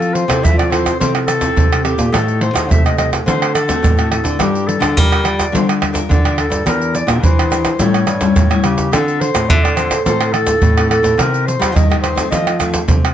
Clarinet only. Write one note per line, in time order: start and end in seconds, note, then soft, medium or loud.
0.00 0.15 A4 medium
0.14 0.45 C5 medium
0.44 0.57 E5 medium
0.57 0.72 D5 medium
0.71 0.99 C5 medium
1.00 1.13 C5 medium
1.27 1.80 A4 loud
1.84 2.15 G4 medium
2.13 2.41 A4 medium
2.42 2.72 C5 medium
2.71 2.85 E5 medium
2.86 2.98 D#5 medium
2.98 3.11 D#5 medium
3.27 3.53 C5 medium
3.55 4.07 A4 medium
4.11 4.43 A4 medium
4.41 4.69 G4 medium
4.68 5.00 A4 medium
4.98 5.28 A#4 medium
5.26 5.54 D5 medium
5.55 5.67 C5 medium
6.12 6.37 D5 medium
6.39 6.65 A4 medium
6.67 6.93 A#4 medium
6.96 7.08 D5 medium
7.24 7.82 C5 medium
7.81 8.66 C#5 medium
8.65 8.95 G4 medium
8.93 9.22 A4 medium
9.21 9.51 C5 medium
9.49 9.65 E5 loud
9.63 9.78 D5 medium
9.76 10.04 C5 medium
10.05 10.34 C5 medium
10.33 10.89 A4 loud
10.90 11.20 A4 medium
11.19 11.48 A#4 medium
11.47 11.77 C5 medium
11.75 11.89 D#5 medium
11.90 11.96 D#5 medium
12.02 12.29 C5 medium
12.31 12.58 D#5 medium